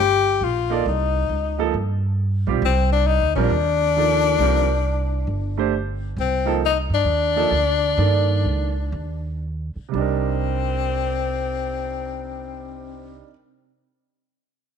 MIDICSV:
0, 0, Header, 1, 5, 480
1, 0, Start_track
1, 0, Tempo, 443459
1, 919, Time_signature, 4, 2, 24, 8
1, 7159, Tempo, 460476
1, 9079, Tempo, 499584
1, 10519, Tempo, 523560
1, 14935, End_track
2, 0, Start_track
2, 0, Title_t, "Grand piano"
2, 0, Program_c, 0, 0
2, 758, Note_on_c, 0, 58, 73
2, 764, Note_on_c, 0, 63, 65
2, 773, Note_on_c, 0, 69, 61
2, 776, Note_on_c, 0, 74, 69
2, 905, Note_off_c, 0, 58, 0
2, 908, Note_off_c, 0, 63, 0
2, 913, Note_off_c, 0, 69, 0
2, 914, Note_off_c, 0, 74, 0
2, 1715, Note_on_c, 0, 53, 69
2, 1717, Note_on_c, 0, 58, 61
2, 1722, Note_on_c, 0, 63, 63
2, 1729, Note_on_c, 0, 69, 83
2, 1863, Note_off_c, 0, 53, 0
2, 1864, Note_off_c, 0, 58, 0
2, 1867, Note_off_c, 0, 63, 0
2, 1870, Note_off_c, 0, 69, 0
2, 2674, Note_on_c, 0, 55, 66
2, 2682, Note_on_c, 0, 60, 57
2, 2685, Note_on_c, 0, 65, 64
2, 2694, Note_on_c, 0, 67, 74
2, 2822, Note_off_c, 0, 55, 0
2, 2826, Note_off_c, 0, 60, 0
2, 2828, Note_off_c, 0, 65, 0
2, 2832, Note_off_c, 0, 67, 0
2, 3639, Note_on_c, 0, 55, 68
2, 3644, Note_on_c, 0, 60, 63
2, 3651, Note_on_c, 0, 65, 62
2, 3655, Note_on_c, 0, 70, 76
2, 3785, Note_off_c, 0, 55, 0
2, 3787, Note_off_c, 0, 60, 0
2, 3791, Note_off_c, 0, 65, 0
2, 3793, Note_off_c, 0, 70, 0
2, 4288, Note_on_c, 0, 53, 57
2, 4293, Note_on_c, 0, 58, 50
2, 4298, Note_on_c, 0, 51, 51
2, 4304, Note_on_c, 0, 69, 57
2, 4766, Note_on_c, 0, 55, 58
2, 4772, Note_on_c, 0, 60, 52
2, 4781, Note_on_c, 0, 65, 57
2, 4782, Note_on_c, 0, 70, 61
2, 5014, Note_off_c, 0, 53, 0
2, 5016, Note_off_c, 0, 58, 0
2, 5019, Note_off_c, 0, 51, 0
2, 5022, Note_off_c, 0, 69, 0
2, 5044, Note_off_c, 0, 55, 0
2, 5047, Note_off_c, 0, 60, 0
2, 5052, Note_off_c, 0, 65, 0
2, 5052, Note_off_c, 0, 70, 0
2, 6034, Note_on_c, 0, 57, 64
2, 6041, Note_on_c, 0, 62, 53
2, 6046, Note_on_c, 0, 67, 57
2, 6055, Note_on_c, 0, 72, 73
2, 6183, Note_off_c, 0, 57, 0
2, 6187, Note_off_c, 0, 62, 0
2, 6189, Note_off_c, 0, 67, 0
2, 6193, Note_off_c, 0, 72, 0
2, 6986, Note_on_c, 0, 53, 65
2, 6993, Note_on_c, 0, 58, 60
2, 6997, Note_on_c, 0, 63, 64
2, 7003, Note_on_c, 0, 69, 74
2, 7141, Note_off_c, 0, 53, 0
2, 7144, Note_off_c, 0, 58, 0
2, 7146, Note_off_c, 0, 63, 0
2, 7149, Note_off_c, 0, 69, 0
2, 7938, Note_on_c, 0, 53, 65
2, 7940, Note_on_c, 0, 58, 55
2, 7945, Note_on_c, 0, 63, 58
2, 7951, Note_on_c, 0, 69, 66
2, 8087, Note_off_c, 0, 53, 0
2, 8088, Note_off_c, 0, 58, 0
2, 8091, Note_off_c, 0, 63, 0
2, 8094, Note_off_c, 0, 69, 0
2, 8584, Note_on_c, 0, 51, 49
2, 8584, Note_on_c, 0, 58, 52
2, 8590, Note_on_c, 0, 69, 50
2, 8598, Note_on_c, 0, 74, 59
2, 9321, Note_off_c, 0, 51, 0
2, 9321, Note_off_c, 0, 58, 0
2, 9324, Note_off_c, 0, 69, 0
2, 9327, Note_off_c, 0, 74, 0
2, 10454, Note_on_c, 0, 48, 51
2, 10483, Note_on_c, 0, 55, 51
2, 10514, Note_on_c, 0, 62, 53
2, 10539, Note_on_c, 0, 63, 53
2, 10570, Note_on_c, 0, 70, 58
2, 13490, Note_off_c, 0, 48, 0
2, 13518, Note_off_c, 0, 55, 0
2, 13547, Note_off_c, 0, 62, 0
2, 13573, Note_off_c, 0, 63, 0
2, 13603, Note_off_c, 0, 70, 0
2, 14935, End_track
3, 0, Start_track
3, 0, Title_t, "Tenor saxophone"
3, 0, Program_c, 1, 66
3, 0, Note_on_c, 1, 67, 106
3, 475, Note_on_c, 1, 65, 83
3, 491, Note_off_c, 1, 67, 0
3, 937, Note_off_c, 1, 65, 0
3, 949, Note_on_c, 1, 63, 73
3, 1850, Note_off_c, 1, 63, 0
3, 2869, Note_on_c, 1, 60, 82
3, 3146, Note_off_c, 1, 60, 0
3, 3163, Note_on_c, 1, 62, 95
3, 3322, Note_on_c, 1, 63, 96
3, 3338, Note_off_c, 1, 62, 0
3, 3627, Note_off_c, 1, 63, 0
3, 3634, Note_on_c, 1, 62, 102
3, 6157, Note_off_c, 1, 62, 0
3, 6712, Note_on_c, 1, 60, 81
3, 7145, Note_off_c, 1, 60, 0
3, 7202, Note_on_c, 1, 63, 90
3, 7330, Note_off_c, 1, 63, 0
3, 7498, Note_on_c, 1, 62, 94
3, 10002, Note_off_c, 1, 62, 0
3, 10530, Note_on_c, 1, 60, 69
3, 13526, Note_off_c, 1, 60, 0
3, 14935, End_track
4, 0, Start_track
4, 0, Title_t, "Upright bass"
4, 0, Program_c, 2, 32
4, 0, Note_on_c, 2, 31, 69
4, 403, Note_off_c, 2, 31, 0
4, 442, Note_on_c, 2, 34, 73
4, 887, Note_off_c, 2, 34, 0
4, 929, Note_on_c, 2, 36, 83
4, 1371, Note_off_c, 2, 36, 0
4, 1397, Note_on_c, 2, 37, 66
4, 1844, Note_off_c, 2, 37, 0
4, 1881, Note_on_c, 2, 43, 70
4, 2629, Note_off_c, 2, 43, 0
4, 2669, Note_on_c, 2, 35, 69
4, 2825, Note_off_c, 2, 35, 0
4, 2834, Note_on_c, 2, 36, 92
4, 3432, Note_off_c, 2, 36, 0
4, 3467, Note_on_c, 2, 38, 58
4, 3621, Note_off_c, 2, 38, 0
4, 3628, Note_on_c, 2, 34, 70
4, 3781, Note_off_c, 2, 34, 0
4, 3789, Note_on_c, 2, 39, 81
4, 4710, Note_off_c, 2, 39, 0
4, 4748, Note_on_c, 2, 36, 88
4, 5670, Note_off_c, 2, 36, 0
4, 5705, Note_on_c, 2, 31, 70
4, 6630, Note_off_c, 2, 31, 0
4, 6674, Note_on_c, 2, 36, 76
4, 7422, Note_off_c, 2, 36, 0
4, 7455, Note_on_c, 2, 43, 66
4, 7601, Note_off_c, 2, 43, 0
4, 7607, Note_on_c, 2, 39, 68
4, 8059, Note_off_c, 2, 39, 0
4, 8093, Note_on_c, 2, 38, 68
4, 8548, Note_off_c, 2, 38, 0
4, 8579, Note_on_c, 2, 43, 86
4, 9042, Note_off_c, 2, 43, 0
4, 9068, Note_on_c, 2, 37, 67
4, 9508, Note_off_c, 2, 37, 0
4, 9528, Note_on_c, 2, 39, 74
4, 10299, Note_off_c, 2, 39, 0
4, 10502, Note_on_c, 2, 36, 77
4, 13499, Note_off_c, 2, 36, 0
4, 14935, End_track
5, 0, Start_track
5, 0, Title_t, "Muted upright bass strokes"
5, 10329, Note_on_c, 9, 29, 34
5, 10425, Note_off_c, 9, 29, 0
5, 14935, End_track
0, 0, End_of_file